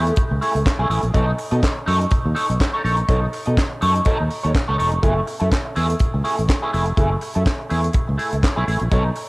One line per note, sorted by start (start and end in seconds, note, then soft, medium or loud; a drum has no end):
0.00 0.13 A3 medium
0.07 muted clean electric guitar stroke soft
0.07 closed hi-hat soft
0.16 muted clean electric guitar stroke soft
0.16 kick loud
0.16 closed hi-hat medium
0.31 0.38 C#2 medium
0.31 muted clean electric guitar stroke soft
0.41 0.58 A3 medium
0.41 0.56 E4 medium
0.41 0.54 G#4 medium
0.41 open hi-hat medium
0.55 0.62 C#2 medium
0.55 muted clean electric guitar stroke soft
0.55 closed hi-hat soft
0.66 muted clean electric guitar stroke medium
0.66 kick loud
0.66 snare loud
0.66 clap medium
0.66 closed hi-hat medium
0.79 0.87 B1 medium
0.79 0.88 A3 medium
0.79 0.89 E4 medium
0.79 0.90 G#4 medium
0.90 0.99 A1 medium
0.90 1.03 A3 medium
0.90 1.03 E4 medium
0.90 1.02 G#4 medium
0.90 open hi-hat medium
1.02 1.11 A#1 medium
1.02 muted clean electric guitar stroke soft
1.02 closed hi-hat soft
1.14 1.31 B1 loud
1.14 1.31 D#4 medium
1.14 1.27 A4 medium
1.14 1.26 C#5 medium
1.14 kick loud
1.14 closed hi-hat medium
1.27 muted clean electric guitar stroke soft
1.38 muted clean electric guitar stroke soft
1.38 open hi-hat medium
1.51 1.59 B2 loud
1.51 1.61 D#4 medium
1.51 1.62 A4 medium
1.51 1.62 D#5 medium
1.51 closed hi-hat soft
1.62 muted clean electric guitar stroke soft
1.62 kick loud
1.62 snare loud
1.62 clap medium
1.62 closed hi-hat medium
1.76 muted clean electric guitar stroke soft
1.86 2.04 F#2 medium
1.86 2.03 D#4 medium
1.86 2.01 A4 medium
1.86 1.99 C#5 medium
1.86 open hi-hat medium
2.01 muted clean electric guitar stroke soft
2.01 closed hi-hat medium
2.10 muted clean electric guitar stroke soft
2.10 kick loud
2.10 closed hi-hat medium
2.25 2.33 D#2 medium
2.25 muted clean electric guitar stroke soft
2.35 2.52 D#4 medium
2.35 2.48 A4 medium
2.35 2.47 C#5 medium
2.35 open hi-hat medium
2.49 2.57 B1 medium
2.49 muted clean electric guitar stroke medium
2.49 closed hi-hat soft
2.60 muted clean electric guitar stroke soft
2.60 kick loud
2.60 snare loud
2.60 clap medium
2.60 closed hi-hat medium
2.73 2.83 D#4 medium
2.73 2.83 A4 medium
2.73 2.84 C#5 medium
2.84 3.01 A#1 medium
2.84 2.98 D#4 medium
2.84 2.98 A4 medium
2.84 2.97 C#5 medium
2.84 open hi-hat medium
2.97 muted clean electric guitar stroke soft
2.97 closed hi-hat soft
3.09 3.26 B1 loud
3.09 3.25 D#4 medium
3.09 3.22 A4 medium
3.09 3.21 C#5 medium
3.09 kick loud
3.09 closed hi-hat medium
3.22 muted clean electric guitar stroke soft
3.33 muted clean electric guitar stroke soft
3.33 open hi-hat medium
3.45 3.54 B2 medium
3.45 3.56 D#4 medium
3.45 3.57 A4 medium
3.45 3.57 D#5 medium
3.45 closed hi-hat soft
3.57 muted clean electric guitar stroke soft
3.57 kick loud
3.57 snare loud
3.57 clap medium
3.57 closed hi-hat medium
3.71 muted clean electric guitar stroke soft
3.81 3.99 F#2 loud
3.81 3.98 D#4 medium
3.81 3.95 A4 medium
3.81 3.94 C#5 medium
3.81 open hi-hat medium
3.95 muted clean electric guitar stroke soft
3.95 closed hi-hat medium
4.05 4.22 D#4 medium
4.05 4.19 A4 loud
4.05 4.18 C#5 loud
4.05 kick loud
4.05 closed hi-hat medium
4.20 4.27 D#2 medium
4.20 muted clean electric guitar stroke soft
4.30 muted clean electric guitar stroke soft
4.30 open hi-hat medium
4.43 4.52 D#2 medium
4.43 4.53 D#4 medium
4.43 4.53 A4 medium
4.43 4.54 C#5 medium
4.43 closed hi-hat soft
4.54 muted clean electric guitar stroke soft
4.54 kick loud
4.54 snare loud
4.54 clap medium
4.54 closed hi-hat medium
4.68 4.76 C#2 medium
4.68 4.77 D#4 medium
4.68 4.77 A4 medium
4.68 4.78 C#5 medium
4.78 4.93 E1 medium
4.78 4.92 D#4 medium
4.78 4.92 A4 medium
4.78 4.91 C#5 medium
4.78 open hi-hat medium
4.91 5.00 F1 medium
4.91 muted clean electric guitar stroke soft
4.91 closed hi-hat soft
5.02 5.20 F#1 loud
5.02 5.19 A3 medium
5.02 5.16 E4 loud
5.02 5.15 G#4 loud
5.02 kick loud
5.02 closed hi-hat medium
5.16 muted clean electric guitar stroke soft
5.26 muted clean electric guitar stroke soft
5.26 open hi-hat medium
5.40 5.49 F#2 loud
5.40 5.50 A3 soft
5.40 5.51 E4 medium
5.40 5.51 A4 medium
5.40 closed hi-hat soft
5.52 muted clean electric guitar stroke soft
5.52 kick loud
5.52 snare loud
5.52 clap loud
5.52 closed hi-hat medium
5.65 muted clean electric guitar stroke soft
5.76 5.93 E2 medium
5.76 5.92 A3 medium
5.76 5.89 E4 medium
5.76 5.88 G#4 loud
5.76 open hi-hat medium
5.89 muted clean electric guitar stroke soft
5.89 closed hi-hat medium
5.99 muted clean electric guitar stroke soft
5.99 kick loud
5.99 closed hi-hat medium
6.14 6.21 C#2 medium
6.14 muted clean electric guitar stroke soft
6.24 6.41 A3 medium
6.24 6.38 E4 medium
6.24 6.37 G#4 medium
6.24 open hi-hat medium
6.38 6.46 A1 medium
6.38 muted clean electric guitar stroke soft
6.38 closed hi-hat soft
6.48 muted clean electric guitar stroke soft
6.48 kick loud
6.48 snare loud
6.48 clap medium
6.48 closed hi-hat medium
6.62 6.71 A3 medium
6.62 6.72 E4 medium
6.62 6.73 G#4 medium
6.73 6.91 F1 medium
6.73 6.86 A3 medium
6.73 6.87 E4 medium
6.73 6.86 G#4 medium
6.73 open hi-hat medium
6.85 muted clean electric guitar stroke soft
6.85 closed hi-hat soft
6.97 7.14 F#1 loud
6.97 7.14 A3 medium
6.97 7.11 E4 medium
6.97 7.11 G#4 medium
6.97 kick loud
6.97 closed hi-hat medium
7.12 muted clean electric guitar stroke soft
7.21 muted clean electric guitar stroke medium
7.21 open hi-hat medium
7.34 7.43 F#2 medium
7.34 7.44 A3 medium
7.34 7.45 E4 medium
7.34 7.46 A4 medium
7.34 closed hi-hat soft
7.46 muted clean electric guitar stroke soft
7.46 kick loud
7.46 snare loud
7.46 clap medium
7.46 closed hi-hat medium
7.59 muted clean electric guitar stroke medium
7.70 7.88 E2 medium
7.70 7.86 A3 medium
7.70 7.83 E4 medium
7.70 7.82 G#4 medium
7.70 open hi-hat medium
7.83 muted clean electric guitar stroke soft
7.83 closed hi-hat medium
7.93 muted clean electric guitar stroke soft
7.93 kick loud
7.93 closed hi-hat medium
8.07 8.16 C#2 medium
8.07 muted clean electric guitar stroke soft
8.18 8.35 A3 medium
8.18 8.32 E4 medium
8.18 8.31 G#4 medium
8.18 open hi-hat medium
8.32 8.40 C#2 medium
8.32 muted clean electric guitar stroke medium
8.32 closed hi-hat soft
8.43 muted clean electric guitar stroke medium
8.43 kick loud
8.43 snare loud
8.43 clap medium
8.43 closed hi-hat medium
8.56 8.65 B1 medium
8.56 8.66 A3 medium
8.56 8.66 E4 medium
8.56 8.67 G#4 medium
8.67 8.77 A1 medium
8.67 8.81 A3 medium
8.67 8.81 E4 medium
8.67 8.80 G#4 medium
8.67 open hi-hat medium
8.80 8.89 A#1 medium
8.80 muted clean electric guitar stroke soft
8.80 closed hi-hat soft
8.91 9.09 B1 loud
8.91 9.08 D#4 medium
8.91 9.05 A4 medium
8.91 9.04 C#5 loud
8.91 kick loud
8.91 closed hi-hat medium
9.06 muted clean electric guitar stroke soft
9.15 muted clean electric guitar stroke soft
9.15 open hi-hat medium